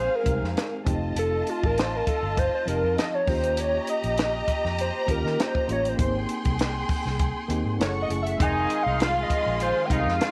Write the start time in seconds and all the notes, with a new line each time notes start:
Already playing: G#3 C4 D#4 G4 G#4 F5
0.00 C5
0.15 A#4
0.24 C2 G#3 C4 D#4 G4, kick, closed hi-hat
0.42 F2, snare
0.57 snare, closed hi-hat
0.84 F1 G#3 C4 D#4 F4 G4 D#5 A5, kick, closed hi-hat
0.91 A3
1.16 F1 A4, closed hi-hat
1.47 F4, closed hi-hat
1.63 A1 A#4, kick
1.78 C5, snare, closed hi-hat
1.96 A#4
2.07 A4, muted fingered electric bass stroke, kick, closed hi-hat
2.23 G1
2.37 C5, kick, closed hi-hat
2.55 C5
2.65 F1 F3 C4 D#4 G4 A#4, closed hi-hat
2.83 F2
2.98 D#5, snare, closed hi-hat
3.15 C#5
3.26 D#2 A#3 C#4 F4 G4 C5 D#5 A#5, kick, open hi-hat
3.44 closed hi-hat
3.57 C#5, closed hi-hat
3.87 D#5, closed hi-hat
4.04 A#1, closed hi-hat
4.18 snare, closed hi-hat
4.48 muted fingered electric bass stroke, kick, closed hi-hat
4.65 F2, snare
4.79 C5, closed hi-hat
5.07 D#2 A#3 C#4 F4 G4, kick, closed hi-hat
5.11 A#4
5.24 D#3, snare
5.40 C5, snare, closed hi-hat
5.55 kick
5.67 A1 A#3 C#4 F4 G4, closed hi-hat
5.72 C#5
5.85 C5, closed hi-hat
5.97 G#1 A#3 B3 D#4 G4 G#4 G5 C6, kick, closed hi-hat
6.05 C4
6.29 closed hi-hat
6.45 C2, kick, closed hi-hat
6.59 snare, closed hi-hat
6.89 muted fingered electric bass stroke, kick, open hi-hat
7.06 C2, snare
7.19 kick, closed hi-hat
7.48 D#2 A#3 C4 D#4 G4, closed hi-hat
7.65 G#2
7.77 F#1 A3 C#4 E4 G#4 A4 F#5 C#6, closed hi-hat
7.81 C#5, snare
8.02 D#5
8.07 F#1 A3 C#4 E4, closed hi-hat
8.11 G#4
8.23 E5, closed hi-hat
8.37 F1 D#3 G#3 C4 D#4 G#4 F5 C6, kick, closed hi-hat
8.41 G#3 F4 G#4 G#5
8.70 closed hi-hat
8.83 C2 D#3 D#4 F5
9.00 F3 F4, snare, closed hi-hat
9.23 D#5
9.30 muted fingered electric bass stroke, kick, closed hi-hat
9.46 A#1
9.60 F3 F4 C5, closed hi-hat
9.85 G#3 C4 G5
9.90 C2 D#3 D#4 G4 F5, kick, closed hi-hat
10.06 F2, snare
10.20 F3 F4, snare, closed hi-hat